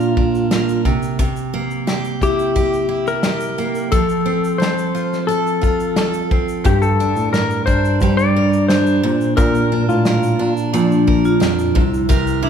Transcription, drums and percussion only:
0.00 shaker
0.17 kick
0.35 shaker
0.51 snare, shaker
0.69 shaker
0.85 kick, shaker
1.02 shaker
1.19 kick, shaker
1.36 shaker
1.71 shaker
1.88 snare, shaker
2.04 shaker
2.22 kick, shaker
2.39 shaker
2.56 kick, shaker
2.73 shaker
3.07 shaker
3.23 snare, shaker
3.40 shaker
3.58 shaker
3.75 shaker
3.92 kick, shaker
4.09 shaker
4.44 shaker
4.62 snare, shaker
4.78 shaker
4.96 shaker
5.13 snare, shaker
5.30 shaker
5.47 shaker
5.63 kick, shaker
5.80 shaker
5.96 snare, shaker
6.14 shaker
6.31 kick
6.49 shaker
6.65 kick, shaker
6.82 shaker
7.00 shaker
7.16 shaker
7.34 snare, shaker
7.50 shaker
7.68 kick, shaker
7.85 shaker
8.01 kick, shaker
8.19 shaker
8.53 shaker
8.70 snare, shaker
8.87 shaker
9.21 shaker
9.38 kick, shaker
9.55 shaker
9.90 shaker
10.05 snare, shaker
10.23 shaker
10.57 shaker
10.74 shaker
10.92 shaker
11.08 kick
11.25 shaker
11.41 snare, shaker
11.59 shaker
11.76 kick
11.94 shaker
12.10 kick, shaker
12.27 shaker

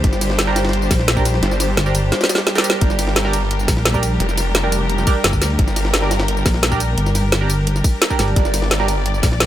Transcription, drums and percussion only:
0.04 kick, closed hi-hat
0.13 snare, tambourine
0.21 snare, closed hi-hat, ride, tambourine
0.30 snare
0.39 snare, closed hi-hat
0.47 snare
0.56 snare, closed hi-hat, ride, tambourine
0.65 snare, closed hi-hat
0.69 snare, closed hi-hat
0.73 closed hi-hat
0.82 tambourine
0.91 kick, snare, closed hi-hat, ride, tambourine
0.99 snare
1.08 snare, closed hi-hat
1.17 kick, tambourine
1.25 snare, closed hi-hat, ride, tambourine
1.34 snare
1.43 snare, closed hi-hat
1.51 snare, tambourine
1.60 snare, closed hi-hat, ride, tambourine
1.77 snare, closed hi-hat
1.86 tambourine
1.95 closed hi-hat, ride, tambourine
2.12 snare, closed hi-hat
2.21 snare, closed hi-hat, tambourine
2.24 snare
2.29 snare, closed hi-hat, ride, tambourine
2.35 snare
2.38 snare, closed hi-hat
2.47 snare, closed hi-hat
2.55 snare, closed hi-hat, tambourine
2.58 snare
2.64 closed hi-hat, ride, tambourine
2.70 snare, closed hi-hat
2.81 kick, closed hi-hat
2.90 snare, tambourine
2.99 snare, closed hi-hat, ride, tambourine
3.07 snare
3.16 snare, closed hi-hat
3.25 snare
3.33 closed hi-hat, ride, tambourine
3.51 closed hi-hat
3.59 tambourine
3.68 kick, snare, closed hi-hat, ride, tambourine
3.77 snare
3.85 snare, closed hi-hat
3.94 kick, tambourine
4.03 closed hi-hat, ride, tambourine
4.20 closed hi-hat
4.29 snare, tambourine
4.37 snare, closed hi-hat, ride, tambourine
4.55 snare, closed hi-hat
4.72 closed hi-hat, ride, tambourine
4.90 closed hi-hat
4.98 snare, tambourine
5.07 kick, closed hi-hat, ride, tambourine
5.24 snare, closed hi-hat
5.33 kick, tambourine
5.42 snare, closed hi-hat, ride, tambourine
5.50 closed hi-hat
5.59 kick, closed hi-hat
5.68 snare, tambourine
5.76 snare, closed hi-hat, ride, tambourine
5.85 snare
5.94 snare, closed hi-hat
6.02 snare
6.11 snare, closed hi-hat, ride, tambourine
6.20 snare, closed hi-hat
6.28 closed hi-hat
6.37 tambourine
6.46 kick, snare, closed hi-hat, ride, tambourine
6.54 snare
6.63 snare, closed hi-hat
6.72 kick, tambourine
6.80 closed hi-hat, ride, tambourine
6.98 closed hi-hat
7.06 snare, tambourine
7.15 snare, closed hi-hat, ride, tambourine
7.32 snare, closed hi-hat
7.50 closed hi-hat, ride, tambourine
7.67 closed hi-hat
7.76 snare, tambourine
7.84 kick, closed hi-hat, ride, tambourine
8.02 snare, closed hi-hat
8.10 kick, tambourine
8.19 snare, closed hi-hat, ride, tambourine
8.28 closed hi-hat
8.36 kick, closed hi-hat
8.45 snare, tambourine
8.54 snare, closed hi-hat, ride, tambourine
8.62 snare
8.71 snare, closed hi-hat
8.80 snare
8.88 closed hi-hat, ride, tambourine
9.06 closed hi-hat
9.14 tambourine
9.23 kick, snare, closed hi-hat, ride, tambourine
9.32 snare
9.40 snare, closed hi-hat

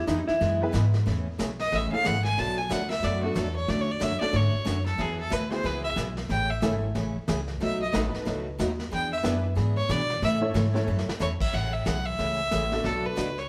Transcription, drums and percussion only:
0.08 snare, hi-hat pedal
0.28 snare
0.41 brush sweep, snare
0.74 snare, hi-hat pedal
0.94 snare
1.07 brush sweep, snare
1.39 snare, hi-hat pedal
1.59 snare
1.72 brush sweep, snare
2.05 snare, hi-hat pedal
2.25 snare
2.38 brush sweep, snare
2.70 snare, hi-hat pedal
2.90 snare
3.03 brush sweep, snare
3.36 snare, hi-hat pedal
3.68 brush sweep, snare
4.01 snare, hi-hat pedal
4.21 snare
4.33 brush sweep, snare
4.66 snare, hi-hat pedal
4.86 snare
4.99 brush sweep, snare
5.31 snare, hi-hat pedal
5.52 snare
5.64 brush sweep, snare
5.97 snare, hi-hat pedal
6.17 snare
6.30 brush sweep, snare
6.62 snare, hi-hat pedal
6.95 brush sweep, snare
7.28 snare, hi-hat pedal
7.48 snare
7.61 brush sweep, snare
7.94 snare, hi-hat pedal
8.14 snare
8.26 brush sweep, snare
8.59 snare, hi-hat pedal
8.80 snare
8.93 brush sweep, snare
9.24 snare, hi-hat pedal
9.57 brush sweep, snare
9.90 snare, hi-hat pedal
10.10 snare
10.22 brush sweep, snare
10.55 snare, hi-hat pedal
10.75 snare
10.99 snare
11.09 snare
11.20 snare, hi-hat pedal
11.41 kick, crash
11.53 brush sweep, snare
11.86 snare, hi-hat pedal
12.19 brush sweep, snare
12.51 snare, hi-hat pedal
12.72 snare
12.84 brush sweep, snare
13.17 snare, hi-hat pedal
13.38 snare

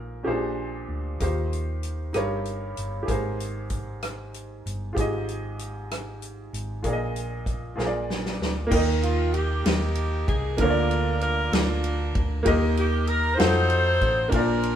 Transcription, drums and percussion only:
1.20 kick, closed hi-hat
1.53 closed hi-hat
1.83 closed hi-hat
2.14 cross-stick, closed hi-hat
2.45 closed hi-hat
2.77 closed hi-hat
3.08 kick, closed hi-hat
3.40 closed hi-hat
3.70 kick, closed hi-hat
4.02 cross-stick, closed hi-hat
4.34 closed hi-hat
4.67 closed hi-hat
4.97 kick, closed hi-hat
5.28 closed hi-hat
5.59 closed hi-hat
5.91 cross-stick, closed hi-hat
6.22 closed hi-hat
6.54 closed hi-hat
6.84 kick, closed hi-hat
7.16 closed hi-hat
7.46 kick, closed hi-hat
7.79 snare
8.10 snare
8.26 snare
8.42 snare
8.71 kick, crash
9.03 ride bell
9.34 ride bell
9.66 snare, ride bell
9.95 ride bell
10.28 kick, ride bell
10.58 kick, ride bell
10.91 ride bell
11.21 ride bell
11.53 snare, ride bell
11.84 ride bell
12.15 kick, ride bell
12.46 kick, ride bell
12.77 ride bell
13.07 ride bell
13.40 snare, ride bell
13.70 ride bell
14.01 kick, ride bell
14.32 kick, ride bell
14.63 ride bell

